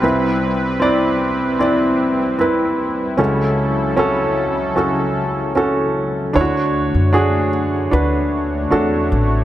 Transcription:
<<
  \new Staff \with { instrumentName = "Grand piano" } { \time 4/4 \key d \lydian \tempo 4 = 76 <c' e' b'>4 <c' e' d''>4 <c' e' d''>4 <c' e' b'>4 | <cis' fis' a'>4 <cis' fis' a'>4 <cis' fis' a'>4 <cis' fis' a'>4 | <d' e' fis' cis''>4 <d' fis' gis'>4 <d' fis' b'>4 <d' fis' a'>4 | }
  \new Staff \with { instrumentName = "Grand piano" } { \clef bass \time 4/4 \key d \lydian <c, c>1 | <cis, cis>1 | d4. r2 r8 | }
  \new Staff \with { instrumentName = "Analog synth pad" } { \time 4/4 \key d \lydian << { <g c' b'>1 | <cis fis cis' a'>1 | <a d' fis'>1 | } \\ { e'1~ | e'1 | cis''1 | } >> }
  \new Staff \with { instrumentName = "Upright bass" } { \clef bass \time 4/4 \key d \lydian r1 | r1 | d,8. fis,4~ fis,16 d,4 e,8 a,,8 | }
>>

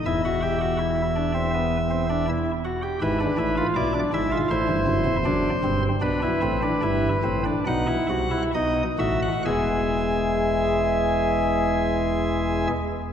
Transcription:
<<
  \new Staff \with { instrumentName = "Pipe organ" } { \time 4/4 \key b \phrygian \tempo 4 = 76 << { e''2.~ e''8 r8 | b'4 d''8 e''8 c''2 | b'2 fis''4 dis''8 e''16 fis''16 | <e gis e''>1 | } \\ { e'16 fis'16 g'16 fis'16 e'8 d'16 c'16 b8 c'16 d'16 e'8 fis'16 g'16 | e'16 d'16 e'16 f'16 e'16 d'16 e'16 f'16 e'4 d'8 c'8 | d'16 e'16 c'16 d'16 e'8 c'16 d'16 dis'16 e'16 fis'16 e'16 dis'8 fis'8 | gis'1 | } >> }
  \new Staff \with { instrumentName = "Pipe organ" } { \clef bass \time 4/4 \key b \phrygian <e,, e,>2.~ <e,, e,>8 r8 | <gis,, gis,>8 <a,, a,>8 <b,, b,>8 <gis,, gis,>8 <a,, a,>16 <g,, g,>16 <fis,, fis,>16 <e,, e,>16 <fis,, fis,>8 <g,, g,>8 | <b,, b,>8 <a,, a,>8 <g,, g,>8 <a,, a,>8 <b,, b,>8 <c, c>8 <b,, b,>8 <a,, a,>8 | <e,, e,>1 | }
>>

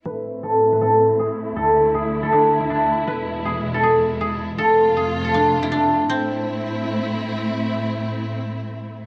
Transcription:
<<
  \new Staff \with { instrumentName = "Guzheng" } { \time 4/4 \key a \minor \tempo 4 = 159 b'4 a'8. b'16 a'4 gis'4 | a'4 gis'8. a'16 d'8. e'16 d'4 | b'4 gis'8. a'16 gis'4 gis'4 | a'4 gis'8. a'16 d'8. e'16 d'4 |
c'2. r4 | r1 | }
  \new Staff \with { instrumentName = "String section" } { \clef bass \time 4/4 \key a \minor << { e'1~ | e'1~ | e'1 | f'1 |
<a, a c' e'>1~ | <a, a c' e'>1 | } \\ { <a, a c'>1 | <d, d>1 | <e, b, gis>1 | <f, c a>1 |
r1 | r1 | } >> }
>>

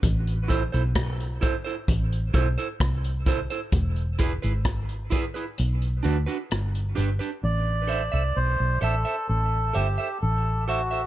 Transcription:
<<
  \new Staff \with { instrumentName = "Clean electric guitar" } { \time 4/4 \key a \dorian \tempo 4 = 65 r8 <e' a' c''>16 <e' a' c''>16 r8 <e' a' c''>16 <e' a' c''>16 r8 <e' a' c''>16 <e' a' c''>16 r8 <e' a' c''>16 <e' a' c''>16 | r8 <e' gis' b'>16 <e' gis' b'>16 r8 <e' gis' b'>16 <e' gis' b'>16 r8 <d' fis' b'>16 <d' fis' b'>16 r8 <d' g' b'>16 <d' g' b'>16 | r8 <a' c'' e''>16 <a' c'' e''>16 r8 <a' c'' e''>16 <a' c'' e''>16 r8 <a' c'' e''>16 <a' c'' e''>16 r8 <a' c'' e''>16 <a' c'' e''>16 | }
  \new Staff \with { instrumentName = "Melodica" } { \time 4/4 \key a \dorian r1 | r1 | d''4 c''8 a'8 a'8 g'8 a'8 fis'8 | }
  \new Staff \with { instrumentName = "Fingered electric bass" } { \clef bass \time 4/4 \key a \dorian a,,8. b,,8. r8 a,,8 b,,16 r16 c,8. r16 | e,,8. gis,,8. r8 b,,8 d,16 r16 g,,8 g,,16 r16 | a,,8. c,16 b,,16 b,,16 a,,16 r16 a,,8 g,,16 r16 a,,4 | }
  \new DrumStaff \with { instrumentName = "Drums" } \drummode { \time 4/4 <hh bd>16 hh16 <hh bd>16 hh16 <hh bd ss>16 hh16 <hh bd>16 hh16 <hh bd>16 hh16 <hh bd>16 hh16 <hh bd ss>16 hh16 <hh bd>16 hh16 | <hh bd>16 hh16 <hh bd>16 hh16 <hh bd ss>16 hh16 <hh bd>16 hh16 hh16 hh16 hh16 hh16 <hh ss>16 hh16 hh16 hh16 | r4 r4 r4 r4 | }
>>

